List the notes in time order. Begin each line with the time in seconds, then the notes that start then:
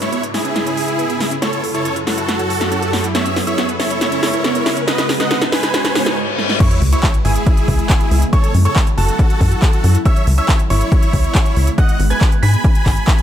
Already playing: C#3 G#3 E4 B4, riser
0.02 E4 C#5, snare, closed hi-hat
0.12 B3, closed hi-hat
0.23 B4, closed hi-hat
0.34 E4 G#4 E5, snare, open hi-hat
0.45 C#4, closed hi-hat
0.56 E4, snare, closed hi-hat
0.66 C#4, closed hi-hat
0.77 G#4, open hi-hat
0.88 E4, closed hi-hat
0.99 B3, closed hi-hat
1.10 B3, closed hi-hat
1.20 E5, snare, open hi-hat
1.31 C#4, closed hi-hat
1.42 F#2 F#3 F#4 A4 C#5, snare, closed hi-hat
1.53 C#5, closed hi-hat
1.63 A4, open hi-hat
1.74 E4 A4 C#5, closed hi-hat
1.85 C#4, closed hi-hat
1.96 E4, closed hi-hat
2.07 F#4 A4 C#5, snare, open hi-hat
2.18 E4, closed hi-hat
2.28 F#4, snare, closed hi-hat
2.39 C#5, closed hi-hat
2.50 F#4, open hi-hat
2.61 F#4, snare, closed hi-hat
2.72 C#4, closed hi-hat
2.82 A4, closed hi-hat
2.93 C#5, snare, open hi-hat
3.04 E4, closed hi-hat
3.15 C#3 G#3 B3 B4 C#5 E5, snare, closed hi-hat
3.26 C#4, closed hi-hat
3.36 B3, snare, open hi-hat
3.47 E4 C#5 E5, closed hi-hat
3.58 B3, snare, closed hi-hat
3.69 B4, closed hi-hat
3.79 E4 C#5 E5, snare, open hi-hat
3.90 C#4, closed hi-hat
4.01 E4, snare, closed hi-hat
4.12 C#4, closed hi-hat
4.23 G#4, snare, open hi-hat
4.33 E4, closed hi-hat
4.44 B3, snare, closed hi-hat
4.55 B3, closed hi-hat
4.66 E5, snare, open hi-hat
4.77 C#4, closed hi-hat
4.87 G#2 G#3 F#4 B4 D#5, snare, closed hi-hat
4.98 B4, snare, closed hi-hat
5.09 G#4, snare, open hi-hat
5.20 D#4 D#5 F#5, snare, closed hi-hat
5.31 B3, snare, closed hi-hat
5.41 D#4, snare, closed hi-hat
5.52 B4 G#5, snare, open hi-hat
5.63 D#4, snare, closed hi-hat
5.74 F#4, snare, closed hi-hat, reverse cymbal
5.84 B4, snare, closed hi-hat
5.95 B3, snare, open hi-hat
6.06 D#4, snare, closed hi-hat
6.39 snare
6.49 snare
6.60 C#3 G#3 B3 E4 C#5 C#6, kick, closed hi-hat, crash, sub drop
6.71 closed hi-hat
6.82 C#2, open hi-hat
6.92 E4 C#5 C#6, closed hi-hat
7.03 kick, clap, closed hi-hat
7.14 closed hi-hat
7.25 G#1 E4 G#4 G#5, open hi-hat
7.36 closed hi-hat
7.46 kick, closed hi-hat
7.57 closed hi-hat
7.68 C#2, kick, open hi-hat
7.79 closed hi-hat
7.90 kick, clap, closed hi-hat
8.01 closed hi-hat
8.11 C#2, open hi-hat
8.22 closed hi-hat
8.33 F#3 C#4 A4 C#5 C#6, kick, closed hi-hat
8.44 closed hi-hat
8.54 F#2, open hi-hat
8.65 A4 C#5 C#6, closed hi-hat
8.76 kick, clap, closed hi-hat
8.87 closed hi-hat
8.98 F#1 F#4 A4 A5, open hi-hat
9.08 closed hi-hat
9.19 kick, closed hi-hat
9.30 closed hi-hat
9.41 F#2, kick, open hi-hat
9.52 closed hi-hat
9.62 kick, clap, closed hi-hat
9.73 closed hi-hat
9.84 F#2, open hi-hat
9.95 closed hi-hat
10.05 C#3 G#3 B3 C#5 E5 E6, kick, closed hi-hat
10.16 closed hi-hat
10.27 C#2, open hi-hat
10.38 C#5 E5 E6, closed hi-hat
10.49 kick, clap, closed hi-hat
10.59 closed hi-hat
10.70 G#1 E4 C#5 C#6, open hi-hat
10.81 closed hi-hat
10.92 kick, closed hi-hat
11.03 closed hi-hat
11.13 C#2, kick, open hi-hat
11.24 closed hi-hat
11.35 kick, clap, closed hi-hat
11.46 closed hi-hat
11.56 C#2, open hi-hat
11.67 closed hi-hat
11.78 D#4 F#4 B4 D#5 F#5 F#6, kick, closed hi-hat
11.89 closed hi-hat
12.00 G#1, open hi-hat
12.10 B4 G#5 G#6, closed hi-hat
12.21 kick, clap, closed hi-hat
12.32 closed hi-hat
12.43 G#2 G#5 B5 B6, open hi-hat
12.54 closed hi-hat
12.64 kick, closed hi-hat
12.75 closed hi-hat
12.86 G#1, kick, clap, open hi-hat
12.97 closed hi-hat
13.08 kick, clap, closed hi-hat
13.18 closed hi-hat